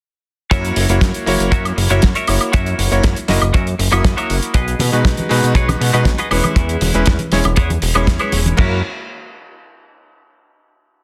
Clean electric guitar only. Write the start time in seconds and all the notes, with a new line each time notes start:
0.51 F#4 A#4 C#5 E5
1.52 F#4 A#4 C#5 E5
1.77 muted clean electric guitar stroke
1.90 F#4 A#4 C#5 E5
2.15 F#4 A#4 C#5 E5
2.53 F#4 A#4 C#5 E5
3.54 F#4 A#4 C#5 E5
3.79 muted clean electric guitar stroke
3.92 F#4 A#4 C#5 E5
4.17 F#4 A#4 C#5 E5
4.55 F#4 G#4 B4 D#5
5.55 F#4 G#4 B4 C#5
5.81 muted clean electric guitar stroke
5.93 F#4 G#4 B4 D#5
6.19 F#4 G#4 B4 D#5
6.31 E4 G#4 B4 C#5
7.57 E4 G#4 B4 C#5
7.82 muted clean electric guitar stroke
7.95 E4 G#4 B4 C#5
8.20 E4 G#4 B4 C#5
8.58 E4 F#4 A#4